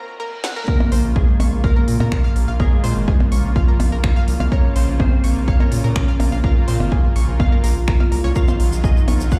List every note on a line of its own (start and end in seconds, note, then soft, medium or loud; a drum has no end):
0.00 reverse cymbal medium
0.20 0.24 A#4 loud
0.44 0.48 F#5 medium
0.44 snare loud
0.56 0.60 A#4 loud
0.68 1.37 C#3 loud
0.68 1.37 A#3 medium
0.68 1.12 A#3 loud
0.68 1.37 F4 loud
0.68 1.12 A#4 loud
0.68 0.75 A#4 loud
0.68 kick loud
0.80 percussion blips loud
0.92 1.02 A#1 medium
0.92 0.99 C5 loud
0.92 open hi-hat loud
1.04 1.13 A#1 medium
1.16 1.60 G#3 medium
1.16 1.23 G#4 medium
1.16 1.60 G#4 medium
1.16 kick loud
1.40 1.50 A#1 loud
1.40 1.98 C#3 medium
1.40 1.98 A#3 medium
1.40 1.98 F4 loud
1.40 1.47 C#6 loud
1.40 open hi-hat medium
1.40 percussion blips loud
1.52 1.61 A#1 medium
1.64 2.51 A#3 loud
1.64 2.51 A#4 loud
1.64 1.74 F5 loud
1.64 kick loud
1.76 1.83 A#4 medium
1.88 1.98 A#2 medium
1.88 open hi-hat loud
2.00 2.09 A#2 medium
2.00 2.09 C#3 medium
2.00 2.09 A#3 medium
2.00 2.09 F4 loud
2.00 2.04 A#4 medium
2.00 percussion blips loud
2.12 2.57 C#3 medium
2.12 2.57 A#3 medium
2.12 2.57 F4 medium
2.12 finger snap loud
2.12 kick loud
2.24 2.34 F5 loud
2.36 2.46 A#1 medium
2.36 open hi-hat medium
2.48 2.57 A#1 medium
2.48 2.58 F5 medium
2.60 3.29 C#3 loud
2.60 3.47 G#3 loud
2.60 3.29 A#3 medium
2.60 3.29 F4 loud
2.60 3.47 G#4 loud
2.60 2.67 A#4 loud
2.60 kick loud
2.60 percussion blips medium
2.84 2.94 A#2 medium
2.84 2.91 C5 loud
2.84 open hi-hat loud
2.96 3.05 G#1 medium
3.08 3.15 G#4 medium
3.08 kick loud
3.20 percussion blips loud
3.32 3.42 A#1 loud
3.32 3.90 C#3 medium
3.32 3.90 A#3 medium
3.32 3.90 F4 medium
3.32 3.39 C#6 loud
3.32 open hi-hat loud
3.44 3.53 A#1 medium
3.56 4.43 F3 loud
3.56 4.43 F4 loud
3.56 3.66 F5 loud
3.56 kick loud
3.68 3.75 A#4 medium
3.80 3.90 A#1 medium
3.80 open hi-hat loud
3.80 percussion blips loud
3.92 4.01 A#1 medium
3.92 4.01 C#3 medium
3.92 4.01 A#3 medium
3.92 4.01 F4 loud
3.92 3.96 A#4 medium
4.04 4.49 C#3 medium
4.04 4.49 A#3 medium
4.04 4.49 F4 medium
4.04 finger snap loud
4.04 kick loud
4.16 4.26 F5 loud
4.28 4.38 C2 medium
4.28 open hi-hat loud
4.40 4.49 C2 medium
4.40 4.50 F5 medium
4.40 percussion blips medium
4.52 5.21 C#3 loud
4.52 5.21 A#3 medium
4.52 4.96 C#4 loud
4.52 5.21 F4 loud
4.52 4.59 A#4 loud
4.52 4.96 C#5 loud
4.52 kick loud
4.76 4.86 A#1 medium
4.76 4.83 C5 loud
4.76 open hi-hat loud
4.88 4.97 A#1 medium
5.00 5.44 C4 loud
5.00 5.07 G#4 medium
5.00 5.44 C5 medium
5.00 kick loud
5.00 percussion blips medium
5.24 5.34 A#1 loud
5.24 5.82 C#3 medium
5.24 5.82 A#3 medium
5.24 5.82 F4 loud
5.24 5.31 C#6 loud
5.24 open hi-hat loud
5.36 5.45 A#1 medium
5.48 6.35 C#4 loud
5.48 6.35 C#5 loud
5.48 5.58 F5 loud
5.48 kick loud
5.60 5.67 A#4 medium
5.60 percussion blips medium
5.72 5.82 A#2 medium
5.72 open hi-hat loud
5.84 5.93 A#2 medium
5.84 5.93 C#3 medium
5.84 5.93 A#3 medium
5.84 5.93 F4 loud
5.84 5.88 A#4 medium
5.96 6.41 C#3 medium
5.96 6.41 A#3 medium
5.96 6.41 F4 medium
5.96 finger snap loud
5.96 kick loud
6.08 6.18 F5 loud
6.20 6.30 A#1 loud
6.20 open hi-hat loud
6.20 percussion blips medium
6.32 6.41 A#1 medium
6.32 6.42 F5 medium
6.44 7.13 C#3 medium
6.44 7.13 A#3 medium
6.44 7.31 F4 loud
6.44 7.13 F4 loud
6.44 6.51 A#4 loud
6.44 7.31 F5 medium
6.44 kick loud
6.68 6.78 A#2 loud
6.68 6.75 C5 loud
6.68 open hi-hat loud
6.80 6.89 G#1 medium
6.80 percussion blips medium
6.92 6.99 G#4 medium
6.92 kick loud
7.16 7.26 A#1 medium
7.16 7.74 C#3 medium
7.16 7.74 A#3 medium
7.16 7.74 F4 loud
7.16 7.23 C#6 loud
7.16 open hi-hat loud
7.28 7.37 A#1 medium
7.40 8.26 F4 loud
7.40 8.27 F5 loud
7.40 7.50 F5 loud
7.40 kick loud
7.40 percussion blips medium
7.52 7.59 A#4 medium
7.64 7.74 A#1 medium
7.64 7.71 A#4 loud
7.64 open hi-hat loud
7.76 7.85 A#1 medium
7.88 7.95 A#4 medium
7.88 finger snap loud
7.88 kick loud
8.00 8.07 F5 medium
8.00 percussion blips medium
8.12 8.22 C2 loud
8.12 8.33 C#3 medium
8.12 8.33 A#3 medium
8.12 8.33 F4 loud
8.12 8.22 A#4 medium
8.12 open hi-hat medium
8.24 8.33 C2 medium
8.24 8.34 C#5 loud
8.35 9.05 D#3 medium
8.35 9.05 F#3 medium
8.35 9.05 F4 loud
8.35 8.80 F4 loud
8.35 8.43 A#4 loud
8.35 8.80 F5 loud
8.35 kick loud
8.35 shaker medium
8.48 8.55 C5 loud
8.48 percussion blips medium
8.48 shaker soft
8.60 8.70 A#1 loud
8.60 open hi-hat loud
8.72 8.81 A#1 medium
8.72 shaker medium
8.84 9.28 D#4 medium
8.84 8.91 G#4 medium
8.84 9.28 D#5 medium
8.84 kick loud
8.84 shaker medium
8.97 shaker soft
9.08 9.18 A#1 loud
9.08 9.39 D#3 medium
9.08 9.39 F#3 medium
9.08 9.39 F4 loud
9.08 9.15 C#6 loud
9.08 open hi-hat medium
9.08 percussion blips medium
9.20 9.29 A#1 medium
9.20 shaker medium
9.31 9.39 F4 loud
9.31 9.39 F5 loud
9.31 9.39 F#5 loud
9.31 kick loud
9.31 shaker medium